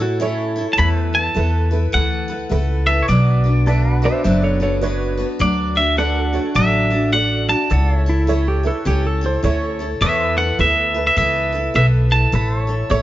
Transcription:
Already playing: A2 A4 C#5 E5
0.00 E4 F#4 A4 C#5
0.20 C#4 E4 A4 C#5
0.56 E4 A4 C#5
0.73 A5
0.77 E2 E3 A3 E4 A4 B4 C#5 E5 B5
1.05 B4
1.13 E4 A4 B4 A5
1.34 E2 A3 E4 A4 B4
1.71 E4 A4 B4
1.92 D2 E3 A3 E4 A4 B4 F#5
2.28 E4 A4 B4
2.49 C#2 A3 E4 A4 B4
2.86 E4 A4 B4 E5
3.02 C#5
3.08 B1 B2 F#3 B3 D4 F#4 B4 D5
3.44 B3 D4 F#4 B4
3.66 B3 D4 F#4 A4 B4 D5 E5
3.92 B4 F#5
4.02 B3 D4 F#4 B4 C5 D5 E5
4.24 F#1 B2 F#3 B3 D4 F#4 B4 C5 E5
4.43 A4 C#5
4.60 B3 D4 F#4 A4 B4 C#5
4.81 B3 D4 F#4 B4 C#5
5.17 B3 D4 F#4 B4
5.39 D2 D3 F#3 A3 D4 F#4 D5
5.75 A3 D4 F#4 D5 E5
5.97 A3 D4 F#4 A4 B4 D5 F#5
6.23 A4
6.33 A3 D4 F#4 A4 C#5 D5
6.55 A1 D3 F#3 A3 D4 F#4 D5 E5
6.90 A3 D4 F#4 D5
7.12 A3 D4 F#4 A4 D5 F#5
7.48 A3 D4 F#4 D5 A5
7.70 C#2 C#4 E4 A4 C#5 D5 F#5
7.92 C#5
7.98 E5
8.06 E4 A4 C#5
8.27 C#4 E4 A4 C#5
8.48 G4
8.63 E4 A4 B4 C#5
8.85 C#2 C#4 E4 G4 A4 C#5
9.07 A4
9.21 E4 A4 C#5
9.26 C5
9.43 D2 C#4 E4 A4 C#5
9.79 E4 A4 C#5
10.01 E2 E3 B3 E4 A4 B4 C#5 E5
10.28 B4
10.37 E4 A4 B4 F#5
10.59 D2 B3 E4 A4 B4 E5
10.94 E4 A4 B4
11.07 E5
11.16 C#2 E3 B3 E4 A4 B4 E5
11.52 E4 A4 B4
11.74 B1 B3 E4 A4 B4 E5
12.10 E4 A4 B4 A5
12.32 A1 A3 E4 A4 B4 C#5 E5
12.60 C#5
12.67 E4 A4 C#5
12.90 A1 A3 E4 A4 C#5

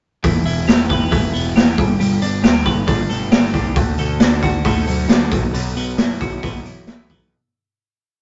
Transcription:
0.24 E1 E3, kick, open hi-hat
0.45 E1 E4, open hi-hat
0.67 E1 G4, snare, open hi-hat
0.90 B4, kick, open hi-hat
1.11 E1 E4, kick, open hi-hat
1.33 E1 B3, open hi-hat
1.55 E1 G4, snare, open hi-hat
1.78 G1 G3, kick, open hi-hat
2.00 G1 G3, open hi-hat
2.22 G1 D4, open hi-hat
2.43 D2 G4, snare, open hi-hat
2.66 G1 B4, kick, open hi-hat
2.87 G1 D4, kick, open hi-hat
3.09 G1 A3, open hi-hat
3.32 G1 G4, snare, open hi-hat
3.54 C2 D4, kick, open hi-hat
3.76 D2 D3, kick, open hi-hat
3.98 D2 A3, open hi-hat
4.20 D2 D4, snare, open hi-hat
4.42 F#4, kick, open hi-hat
4.65 D2 A3, kick, open hi-hat
4.87 D2 F#3, open hi-hat
5.09 D2 D4, snare, open hi-hat
5.31 B1 B2, kick, open hi-hat
5.53 B1 B2, open hi-hat
5.75 B1 B3, open hi-hat
5.97 F#2 E4, snare, open hi-hat
6.21 B1 F#4, kick, open hi-hat
6.43 B1 B3, kick, open hi-hat
6.65 B1 E3, open hi-hat
6.87 B1 E4, snare, open hi-hat
7.10 B1 B3, kick, open hi-hat

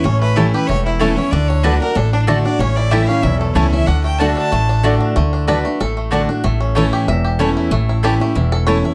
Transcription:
Already playing: A3
0.04 A1 A2 C#4 C#5
0.21 A3 B4
0.36 E3 A3 C#4 E4 G4 C#5 A5
0.53 C#4 E4 G4 B4
0.67 E1 E2 A3 C#5
0.86 E4
0.99 E3 A3 C#4 E4 A4 C#5 A5
1.16 C#4 E4 C#5
1.31 D2 D3 D4 D5
1.48 D4 C#5
1.63 D3 A3 D4 F#4 B4 D5 A5
1.80 D4 F#4 A#4
1.95 A1 A2 D4 A4
2.13 D4
2.27 D3 A3 D4 F#4 D5 A5
2.45 D4 F#4 D5
2.59 A1 A2 C#4 C#5
2.76 E4 D5
2.91 E3 A3 C#4 E4 G4 C#5 E5 A5
3.07 C#4 E4 F5
3.23 B1 E2 E4 E5
3.39 A3 A4
3.54 C#2 E3 A3 C#4 E4 C#5 A5
3.71 A3 C#4 E4 E5
3.87 D2 D3 D4 F#5
4.04 A3 G5
4.19 D3 A3 D4 F#4 D5 A5
4.37 D4 A5
4.52 A1 A2 A3
4.69 D4
4.83 D3 A3 D4 F#4 D5 A5
5.00 D4
5.16 D2 D3 A3
5.33 D4
5.47 D3 A3 D4 F#4 B4 D5 A5
5.65 A3 D4 F#4
5.80 A1 A2 A4
5.97 A3
6.11 D3 A3 D4 F#4 D5 A5
6.29 D4 F#4
6.44 A1 A2 A3
6.60 C#4
6.75 E3 A3 C#4 E4 C#5 A5
6.93 G4
7.08 E1 E2 E5
7.24 G4
7.39 E3 A3 C#4 E4 C#5 A5
7.57 E4
7.71 A1 A2 A3
7.89 E4
8.03 E3 A3 C#4 E4 G4 C#5 A5
8.20 A3 C#4 E4
8.35 E1 E2 E4
8.52 A4
8.67 E3 A3 C#4 E4 C#5 A5
8.84 C#4 E4

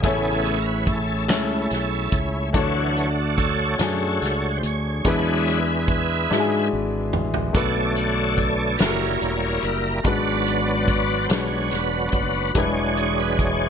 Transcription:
0.02 A1 A2 C#3 A3 B3 C#4 E4 G#4 A4 C#5, kick, closed hi-hat
0.45 closed hi-hat
0.61 A#4
0.66 B4
0.87 A4, kick, closed hi-hat
1.28 C#2 A3 C#4 E4 G#4 A4 C#5, snare, closed hi-hat
1.71 B1, snare, closed hi-hat
2.12 C#2, kick, closed hi-hat
2.53 D2 D3 E3 F#3 A3 D4 F#4 C#5, kick, closed hi-hat
2.97 closed hi-hat
3.37 F#4 A4 C#5, kick, closed hi-hat
3.79 F#2 A3 D4 F#4 G#4, snare, closed hi-hat
4.22 C#2, snare, closed hi-hat
4.57 C5
4.63 D2 C#5, closed hi-hat
5.05 E2 E3 F#3 G#3 D4 E4 G#4 B4 E5, kick, closed hi-hat
5.47 closed hi-hat
5.88 kick, closed hi-hat
6.30 G#2 G#3 D4 E4 F#4, snare
6.40 G#4
6.73 G#1
7.13 A1, mid tom
7.34 floor tom
7.53 B1 B2 D3 A3 D4 F#4 A4 B4 C#5 D5 F#5, kick, closed hi-hat
7.95 F#5, closed hi-hat
8.37 D5, kick, closed hi-hat
8.77 F#1 G3 A#3 E4 A#4 C#5, snare, closed hi-hat
8.82 F#4 A4
8.89 A#4
9.22 E1, closed hi-hat
9.62 F#1 A#4, closed hi-hat
10.03 G#1 G#2 F#3 G#3 B3 D4 F#4 B4 D5, kick, closed hi-hat
10.07 B4
10.47 closed hi-hat
10.88 kick, closed hi-hat
11.23 C5
11.28 B1 G#3 D4 F#4 B4, snare, closed hi-hat
11.33 C#5
11.71 E1 D4 F#4 B4, snare, closed hi-hat
12.12 F#1, kick, closed hi-hat
12.54 E1 E3 F#3 G3 G#3 D4 E4 G#4 B4, kick, closed hi-hat
12.59 G#3 C#5
12.97 closed hi-hat
13.20 B4
13.39 C#5, kick, closed hi-hat

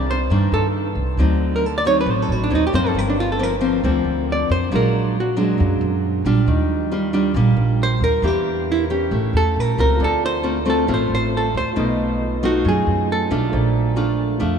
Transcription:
Already playing: C2 C3 D#3 A#3 D4
0.11 C5
0.30 G2 D#3 A#3 D4
0.52 G2 A4
0.95 C2
1.17 D2 D3 F#3 C4 D#4
1.56 A#4
1.66 A4
1.78 D5
1.85 F#3 C4 D#4 C#5
2.01 B4
2.06 A1 A2
2.11 C5
2.22 A4
2.28 A1 F#4
2.44 D4
2.50 D#2 F#3 C4 D#4
2.55 D#4
2.67 G4
2.73 F#2 F3 A#3 C4 C5
2.88 A4
2.94 G1 G2
2.99 A#4
3.10 D4
3.20 F4
3.32 A4
3.39 F3 A#3 C4
3.43 A#4
3.61 F3 A#3 C4
3.83 D2 D3 F3 A#3 C4
4.04 D2
4.32 D5
4.49 F2 C5
4.71 A#1 A#2 F#3 G#3 D4
4.76 A#4
5.20 F#4
5.37 F#3 G#3 D4
5.58 F#2 A#2
5.81 F#2
6.25 A#1 G3 D4 F4
6.46 D#2 D#3
6.92 G3 D4 F4
7.13 G3 D4 F4
7.34 A#1 A#2 G3 D4 F4
7.56 A#1
7.83 C5
8.00 D#2 A#4
8.22 E2 E3 A#3 D4 G4
8.27 G4
8.72 E4
8.90 C#4 G4
9.11 A1 A3
9.33 E2 A4
9.56 A#1
9.60 A#4
9.78 C#2 A3 C4 F4 A#4
9.97 D2 D3 F4 A4
10.01 A4 C5 D5
10.26 C5
10.43 A3 C4 F4
10.65 A3 C4 F4
10.70 A4
10.87 A1 A2 A3 C4 F4
10.94 C5
11.10 A1
11.15 C5
11.37 A4
11.54 D2 C5
11.73 B1 B2 A3 D#4 F4
11.78 A3 D#5
12.43 A3 D#4 F4 F#4
12.65 F#2 F#3 G#4
12.87 F#2
13.12 A4
13.31 B1 A3 D4 F4
13.49 A#1 A#2 F4 A4
13.53 C5 D5
13.96 A3 D4 F4
14.39 F2 F3 A3 D4 F4

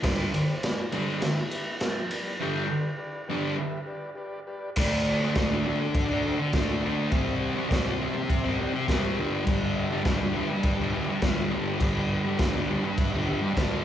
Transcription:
0.03 G2 D3 G3 G4 B4 D5 D6, kick, snare, crash
0.32 G4 B4 D5, ride
0.63 G4 B4 D5, snare, ride
0.91 G2 D3 G3 G4 B4 D5, ride
1.18 G4 B4 E5, ride
1.22 snare
1.51 G4 B4 E5, ride
1.80 G4 B4 E5 F5 A5, snare, ride
2.09 G4 B4 D5 B5 D6, ride
2.38 G2 D3 G4 B4 E5 G5
2.42 G3
2.66 G4 B4 D5
2.97 G4 B4 D5
3.27 G2 D3 G3 G4 B4 D5
3.54 G4 B4 E5
3.86 G4 B4 D5
4.15 G4 B4 D5
4.47 G4 B4 D5
4.76 D3 A3 F#4 A4 D5, kick, crash
4.80 D4
5.04 F#4 A4 D5
5.21 A3 D4
5.34 D3 A3 F#4 A4 B4, kick, snare, crash
5.38 D4
5.51 A3 D4
5.63 D3 A3 F#4 A4 D5
5.68 D4
5.80 muted distorted electric guitar stroke
5.93 F#4 A4 D5, kick, crash
6.08 A3 D4
6.24 D3 A3 D4 F#4 A4 C5
6.40 muted distorted electric guitar stroke
6.53 D3 A3 D4 F#4 A4 D5, kick, snare, crash
6.81 D3 A3 D4 F#4 A4 D5
7.11 C3 E3 G3 G4 C5 E5, kick, crash
7.15 C4
7.39 E3 G4 C5 F#5
7.56 G3 C4
7.69 C3 E3 G3 G4 C5 D5, kick, snare, crash
7.73 C4
7.85 G3 C4
7.99 C3 E3 G3 C4 G4 C5 E5
8.15 muted distorted electric guitar stroke
8.27 E3 G4 C5 E5, kick, crash
8.44 G3 C4
8.56 C3 E3 G4 C5 G5
8.60 G3 C4
8.74 muted distorted electric guitar stroke
8.85 C3 E3 G4 C5 E5, kick, crash
8.89 G3 C4, snare
9.14 G2 G4 B4 D5
9.19 D3 G3
9.46 G2 D3 G3, kick, crash
9.73 G4 B4 E5
9.90 D3 G3
10.03 G2 D3 G4 B4 D5, kick, snare, crash
10.07 G3
10.19 D3 G3
10.32 G2 D3 G4 B4 E5
10.37 G3
10.50 muted distorted electric guitar stroke
10.63 G4 B4 D5, kick, crash
10.77 D3 G3
10.92 G2 D3 G3 G4 B4 E5
11.09 muted distorted electric guitar stroke
11.22 G2 D3 G3 G4 B4 E5, kick, snare, crash
11.51 G2 D3 G3 G4 B4 D5
11.80 G2 D3 G3 G4 B4 D5, kick, crash
12.09 G4 B4 D5
12.25 D3 G3
12.39 G2 D3 G3 G4 B4 D5, kick, snare, crash
12.54 D3 G3
12.69 G2 D3 G4 B4 D5
12.73 G3
12.84 muted distorted electric guitar stroke
12.97 G4 B4 E5, kick, crash
13.12 D3 G3
13.27 G2 D3 G3 G4 B4 E5
13.42 muted distorted electric guitar stroke
13.54 G2 D3 G3 G4 B4 D5, kick, snare, crash

